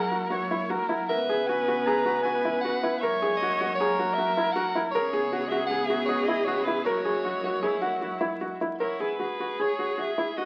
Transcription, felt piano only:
0.12 0.25 F#4 medium
0.30 0.44 F#4 medium
0.51 0.64 E4 medium
0.70 0.83 F#4 medium
0.89 1.03 E4 medium
1.09 1.23 A#4 medium
1.29 1.42 G#4 medium
1.49 1.62 F#4 medium
1.68 1.81 F#4 medium
1.87 2.00 G#4 medium
2.06 2.19 F#4 medium
2.25 2.38 F#4 medium
2.45 2.58 E4 medium
2.65 2.78 F#4 medium
2.83 2.96 E4 medium
3.03 3.16 A#4 medium
3.22 3.35 G#4 medium
3.42 3.55 F#4 medium
3.61 3.74 F#4 medium
3.81 3.93 G#4 medium
4.00 4.12 F#4 medium
4.18 4.31 F#4 medium
4.37 4.50 E4 medium
4.56 4.69 F#4 medium
4.75 4.88 E4 medium
4.95 5.08 A#4 loud
5.13 5.26 G#4 medium
5.33 5.46 F#4 medium
5.52 5.65 F#4 medium
5.71 5.84 G#4 medium
5.90 6.03 F#4 medium
6.09 6.22 F#4 medium
6.28 6.41 E4 medium
6.47 6.61 F#4 medium
6.67 6.80 E4 medium
6.86 6.99 A#4 medium
7.05 7.18 G#4 medium
7.24 7.37 F#4 medium
7.44 7.57 F#4 medium
7.63 7.76 G#4 medium
7.82 7.96 F#4 medium
8.01 8.15 F#4 medium
8.21 8.35 E4 medium
8.41 8.55 F#4 medium
8.61 8.75 E4 medium
8.80 8.94 A#4 medium
9.00 9.14 G#4 medium
9.20 9.33 F#4 medium
9.40 9.54 F#4 medium
9.60 9.73 G#4 medium
9.79 9.92 F#4 medium
9.98 10.11 F#4 medium
10.18 10.31 E4 medium
10.38 10.45 F#4 medium

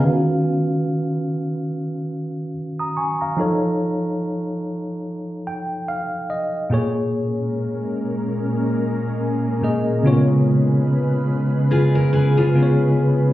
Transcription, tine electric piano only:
0.00 3.34 D#3 medium
0.00 0.27 B4 medium
0.05 3.34 C#4 medium
0.05 3.35 F#4 medium
0.05 2.52 F5 medium
2.79 2.96 A#5 medium
2.79 2.96 D#6 medium
2.97 3.20 G#5 medium
2.97 3.20 C#6 medium
3.21 3.61 F5 medium
3.21 3.60 A#5 medium
3.37 6.67 F3 medium
3.37 6.67 D#4 medium
3.37 6.68 A4 medium
3.41 6.69 C#5 medium
5.47 5.86 G5 medium
5.88 6.27 F5 medium
6.30 6.69 D#5 medium
6.70 9.58 A#2 medium
6.70 9.59 A#3 medium
6.70 9.60 G#4 medium
6.70 9.60 C#5 medium
9.62 10.04 A#2 medium
9.62 10.05 A#3 soft
9.62 10.05 G#4 medium
9.62 10.05 D#5 medium
10.03 12.50 C#3 medium
10.03 12.51 B3 medium
10.03 12.51 F4 medium
10.03 12.52 C#5 medium
12.54 13.33 C#3 medium
12.54 13.33 B3 medium
12.54 13.33 F4 medium
12.54 12.63 B4 soft
12.63 13.33 C#5 medium

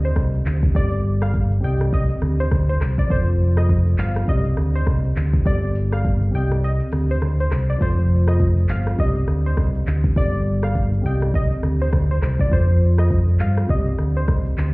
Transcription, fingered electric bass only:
0.16 0.39 C2 loud
0.45 0.68 D2 loud
0.75 1.59 G1 loud
1.63 2.09 C2 loud
2.22 2.45 D2 loud
2.52 2.74 D2 loud
2.81 3.04 C2 loud
3.10 3.95 F1 loud
3.98 4.21 G1 loud
4.28 4.51 C2 loud
4.57 4.80 D2 loud
4.87 5.10 C2 loud
5.16 5.39 D2 medium
5.46 6.30 G1 loud
6.34 6.80 C2 loud
6.93 7.16 D2 medium
7.22 7.45 D2 loud
7.51 7.74 C2 loud
7.81 8.65 F1 loud
8.69 8.92 G1 medium
8.99 9.22 C2 loud
9.28 9.51 D2 loud
9.57 9.80 C2 loud
9.87 10.10 D2 loud
10.16 11.00 G1 loud
11.04 11.50 C2 loud
11.63 11.86 D2 medium
11.93 12.16 D2 loud
12.22 12.52 C2 medium
12.52 13.36 F2 loud
13.40 13.63 G2 medium
13.69 13.92 C2 loud
13.99 14.22 D2 loud
14.28 14.51 C2 medium
14.57 14.74 D2 medium

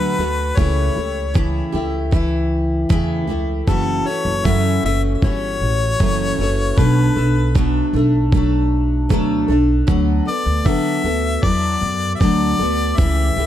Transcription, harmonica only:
0.00 0.59 B4 medium
0.57 1.35 C#5 medium
3.69 4.09 A4 medium
4.07 4.47 C#5 loud
4.46 4.84 E5 medium
4.86 5.02 E5 medium
5.24 6.80 C#5 loud
6.79 7.56 B4 medium
10.28 10.68 D5 medium
10.67 11.45 E5 loud
11.43 12.13 D5 medium
12.15 12.21 E5 medium
12.20 12.99 D5 medium
12.97 13.46 E5 medium

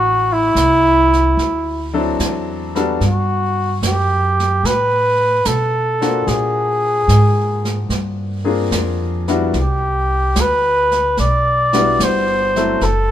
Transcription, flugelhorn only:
0.00 0.35 F#4 medium
0.33 1.95 E4 medium
3.06 3.80 F#4 medium
3.86 4.67 G4 medium
4.66 5.48 B4 medium
5.46 6.29 A4 medium
6.28 7.90 G#4 medium
9.61 10.43 G4 medium
10.41 11.19 B4 medium
11.20 12.05 D5 medium
12.04 12.85 C5 medium
12.83 13.11 A4 medium

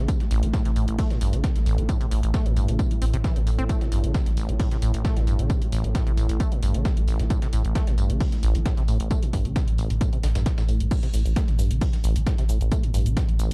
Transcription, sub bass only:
0.31 0.42 A1 loud
0.43 0.53 A1 medium
0.65 0.76 A1 medium
0.76 0.87 A1 loud
0.88 0.98 A1 medium
1.21 1.32 A1 loud
1.33 1.44 A1 medium
1.56 1.66 A1 medium
1.66 1.78 A1 loud
1.78 1.89 A1 medium
2.11 2.23 A1 loud
2.23 2.34 A1 medium
2.46 2.56 A1 medium
2.56 2.68 A1 loud
2.68 2.79 A1 medium
3.02 3.13 A1 loud
3.14 3.24 A1 medium
3.36 3.46 A1 medium
3.47 3.58 A1 medium
3.59 3.69 A1 medium
3.92 4.03 A1 loud
4.04 4.14 A1 medium
4.26 4.36 A1 medium
4.37 4.48 A1 loud
4.49 4.59 A1 medium
4.82 4.93 A1 loud
4.94 5.04 A1 medium
5.16 5.27 A1 medium
5.27 5.38 A1 loud
5.39 5.50 A1 medium
5.72 5.84 A1 loud
5.84 5.95 A1 medium
6.07 6.17 A1 medium
6.17 6.29 A1 loud
6.29 6.40 A1 medium
6.63 6.74 A1 loud
6.74 6.85 A1 medium
6.97 7.07 A1 medium
7.08 7.19 A1 loud
7.20 7.30 A1 medium
7.53 7.64 A1 loud
7.65 7.75 A1 medium
7.87 7.97 A1 medium
7.98 8.09 A1 loud
8.10 8.20 A1 medium
8.43 8.54 A1 loud
8.55 8.65 A1 medium
8.77 8.88 A1 medium
8.88 8.99 A1 loud
9.00 9.10 A1 medium
9.33 9.45 A1 medium
9.45 9.56 A1 medium
9.68 9.78 A1 medium
9.78 9.90 A1 loud
9.90 10.01 A1 medium
10.23 10.35 A1 loud
10.35 10.46 A1 medium
10.58 10.68 A1 medium
10.69 10.80 A1 loud
10.80 10.91 A1 medium
11.14 11.25 A1 medium
11.26 11.36 A1 medium
11.48 11.58 A1 medium
11.59 11.70 A1 loud
11.71 11.81 A1 medium
12.04 12.15 A1 loud
12.16 12.26 A1 medium
12.38 12.48 A1 medium
12.49 12.60 A1 loud
12.61 12.71 A1 medium
12.94 13.05 A1 medium
13.06 13.17 A1 medium
13.29 13.39 A1 medium
13.39 13.51 A1 loud

